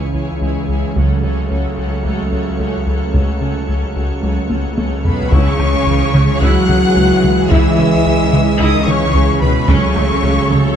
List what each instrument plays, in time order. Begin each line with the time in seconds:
Already playing: cello section C#2, detuned saw bass C#2, ambient pad E3 G#3 C#4 C#5, trombone section E3 G#3, viola section E4 G#4, violin section C#5 G#5
0.14 analog synth bass C#2, synth pluck E3, viola section E4 G#4, violin section C#5 G#5
0.41 analog synth bass C#2, cello section C#2, synth pluck E3, viola section E4 G#4, violin section C#5 G#5
0.69 analog synth bass C#2, viola section E4 G#4, violin section C#5 G#5
0.96 double bass section C#2, detuned saw bass C#2, analog synth bass C#2, cello section C#2, synth pluck F#3, trombone section F#3 A3, ambient pad F#3 A3 C#4 C#5, viola section C#4 A4, violin section C#5 F#5, taiko
1.23 analog synth bass C#3, viola section C#4 A4, synth pluck C#4, violin section C#5 F#5
1.50 analog synth bass C#2, cello section C#2, synth pluck A3, viola section C#4 A4, violin section C#5 F#5
1.78 analog synth bass C#2, viola section C#4 A4, synth pluck F#4, violin section C#5 F#5
2.05 analog synth bass C#2, cello section C#2, synth pluck F#3, viola section C#4 A4, violin section C#5 F#5
2.32 analog synth bass C#2, synth pluck A3, viola section C#4 A4, violin section C#5 F#5
2.59 cello section C#2, analog synth bass C#2, synth pluck A3, viola section C#4 A4, violin section C#5 F#5
2.87 analog synth bass C#2, viola section C#4 A4, violin section C#5 F#5
3.14 double bass section C#2, analog synth bass C#2, cello section C#2, synth pluck F#3, viola section C#4 A4, violin section C#5 F#5, taiko
3.41 analog synth bass C#3, viola section C#4 A4, synth pluck C#4, violin section C#5 F#5
3.68 analog synth bass C#2, cello section C#2, synth pluck A3, viola section C#4 A4, violin section C#5 F#5
3.95 analog synth bass C#2, viola section C#4 A4, synth pluck F#4, violin section C#5 F#5
4.22 analog synth bass C#2, cello section C#2, synth pluck F#3, viola section C#4 A4, violin section C#5 F#5
4.50 analog synth bass C#2, synth pluck A3, viola section C#4 A4, violin section C#5 F#5, taiko high
4.77 analog synth bass C#2, cello section C#2, synth pluck A3, viola section C#4 A4, violin section C#5 F#5, taiko high
5.04 analog synth bass C#2, cello section B2, french horn section B3, viola section C#4 A4, violin section B4 C#5 F#5 B5, taiko low
5.31 analog synth bass C#2, detuned saw bass C#2, double bass section C#2, cello section C#3, synth pluck C#3, trombone section E3 G#3, ambient pad E3 G#3 C#4 C#5, french horn section C#4, viola section E4 G#4, violin section C#5 C#6, taiko
5.59 analog synth bass C#2, double bass section C#2, synth pluck E3, viola section C#4, taiko rim
5.86 analog synth bass C#2, double bass section C#2, synth pluck E3, viola section G#3
6.14 double bass section C#2, analog synth bass C#3, synth pluck G#3, viola section C#4, taiko mid
6.41 analog synth bass C#2, double bass section C#2, synth pluck C#3, cello section F#3, viola section E4, french horn section F#4, violin section F#5 F#6
6.68 analog synth bass C#2, double bass section C#2, viola section C#4, synth pluck C#4, taiko mid
6.96 double bass section C#2, analog synth bass C#2, viola section G#3, synth pluck C#4
7.24 analog synth bass C#2, taiko mid
7.50 double bass section C#2, analog synth bass C#2, synth pluck C#3, cello section E3, french horn section E4, viola section E4, violin section E5 E6, taiko
7.78 analog synth bass C#2, double bass section C#2, synth pluck E3, viola section C#4
8.05 analog synth bass C#2, double bass section C#2, synth pluck E3, viola section G#3
8.33 double bass section C#2, analog synth bass C#3, synth pluck G#3, viola section C#4, taiko mid
8.59 double bass section C#2, analog synth bass C#2, synth pluck C#3, cello section D#3, french horn section D#4, viola section E4, violin section D#5 D#6
8.86 double bass section C#2, analog synth bass C#2, cello section C#3, french horn section C#4, synth pluck C#4, viola section C#4, violin section C#5 C#6, taiko mid
9.14 double bass section C#2, analog synth bass C#2, viola section G#3, synth pluck C#4
9.41 analog synth bass C#2, cello section B2, french horn section B3, violin section B4 B5, taiko mid
9.67 detuned saw bass C#2, double bass section C#2, analog synth bass C#2, cello section C#3, ambient pad F#3 A3 C#4 C#5, synth pluck F#3, trombone section F#3 A3, french horn section C#4, viola section C#4 A4, violin section C#5 C#6, taiko
9.96 analog synth bass C#2, double bass section C#2, viola section A3, synth pluck A3, taiko rim
10.23 analog synth bass C#2, double bass section C#2, viola section F#3, synth pluck A3
10.50 double bass section C#2, analog synth bass C#3, viola section A3, synth pluck C#4, taiko mid